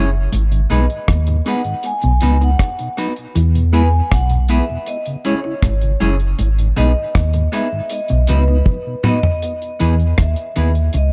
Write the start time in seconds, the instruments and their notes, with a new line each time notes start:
Already playing: sub bass F#1, clean electric guitar F#2
0.32 sub bass G#1, clean electric guitar G#2, closed hi-hat
0.52 tonewheel organ G#2 D#3, closed hi-hat
0.70 sub bass B1, clean electric guitar B2 B3 D#4 G#4 B4, tonewheel organ G#3 B3 D#4, vibraphone D#5, closed hi-hat
0.90 closed hi-hat
1.08 sub bass D#2, clean electric guitar D#3, kick, cross-stick, closed hi-hat
1.27 tonewheel organ G#2 D#3, muted clean electric guitar stroke, closed hi-hat
1.45 tonewheel organ G#3 B3 D#4, clean electric guitar B3 D#4 G#4 B4, vibraphone F#5, closed hi-hat
1.64 tonewheel organ G#2 D#3, closed hi-hat
1.83 vibraphone G#5, closed hi-hat
2.02 sub bass B1, tonewheel organ B2, clean electric guitar B2, closed hi-hat
2.21 sub bass C#2, clean electric guitar C#3 B3 D#4 F#4 B4, tonewheel organ F#3 B3 D#4, closed hi-hat
2.41 tonewheel organ B3 D#4, vibraphone F#5, muted clean electric guitar stroke, closed hi-hat
2.59 kick, cross-stick, closed hi-hat
2.79 tonewheel organ B2, closed hi-hat
2.97 tonewheel organ F#3 B3 D#4, clean electric guitar B3 D#4 F#4 B4, closed hi-hat
3.16 closed hi-hat
3.35 sub bass E2, clean electric guitar E3, closed hi-hat
3.55 tonewheel organ E2 B2, closed hi-hat
3.72 tonewheel organ G#3 B3 E4, clean electric guitar B3 E4 G#4 B4, vibraphone G#5, closed hi-hat
4.12 sub bass B1, clean electric guitar B2, vibraphone F#5, kick, cross-stick, closed hi-hat
4.29 tonewheel organ E2 B2, muted clean electric guitar stroke, closed hi-hat
4.48 tonewheel organ G#3 B3 E4, clean electric guitar B3 E4 G#4 B4, vibraphone E5, closed hi-hat
4.70 tonewheel organ E2 B2
4.86 vibraphone D#5, closed hi-hat
5.06 tonewheel organ C#3, closed hi-hat
5.25 tonewheel organ G#3 C#4 E4, clean electric guitar C#4 E4 G#4 C#5, vibraphone C#5, closed hi-hat
5.44 tonewheel organ C#4 E4, muted clean electric guitar stroke
5.62 sub bass G#1, clean electric guitar G#2, kick, cross-stick, closed hi-hat
5.81 tonewheel organ C#3, closed hi-hat
6.00 sub bass F#1, clean electric guitar F#2 C#4 E4 G#4 C#5, tonewheel organ G#3 C#4 E4, closed hi-hat
6.20 closed hi-hat
6.39 sub bass G#1, clean electric guitar G#2, closed hi-hat
6.59 tonewheel organ G#2 D#3, closed hi-hat
6.76 sub bass B1, clean electric guitar B2 B3 D#4 G#4 B4, tonewheel organ G#3 B3 D#4, vibraphone D#5, closed hi-hat
7.15 sub bass D#2, clean electric guitar D#3, kick, cross-stick, closed hi-hat
7.33 tonewheel organ G#2 D#3, muted clean electric guitar stroke, closed hi-hat
7.52 tonewheel organ G#3 B3 D#4, clean electric guitar B3 D#4 G#4 B4, vibraphone E5, closed hi-hat
7.72 tonewheel organ G#2 D#3
7.90 vibraphone D#5, closed hi-hat
8.08 sub bass B1, clean electric guitar B2, tonewheel organ B2, closed hi-hat
8.27 sub bass C#2, clean electric guitar C#3 B3 D#4 F#4 B4, tonewheel organ F#3 B3 D#4, closed hi-hat
8.32 vibraphone B4
8.48 tonewheel organ B3 D#4, muted clean electric guitar stroke
8.66 kick, high tom
8.87 tonewheel organ B2
9.03 tonewheel organ F#3 B3 D#4, clean electric guitar B3 D#4 F#4 B4, mid tom
9.08 vibraphone D#5
9.23 floor tom
9.42 closed hi-hat
9.62 closed hi-hat
9.80 sub bass E2, clean electric guitar E3 B3 E4 G#4 B4, closed hi-hat
10.00 closed hi-hat
10.18 sub bass D#2, clean electric guitar D#3, vibraphone E5, kick, cross-stick, closed hi-hat
10.36 closed hi-hat
10.56 sub bass D#2, clean electric guitar D#3 B3 E4 G#4 B4, closed hi-hat
10.75 closed hi-hat
10.93 sub bass C#2, clean electric guitar C#3, closed hi-hat
10.97 vibraphone D#5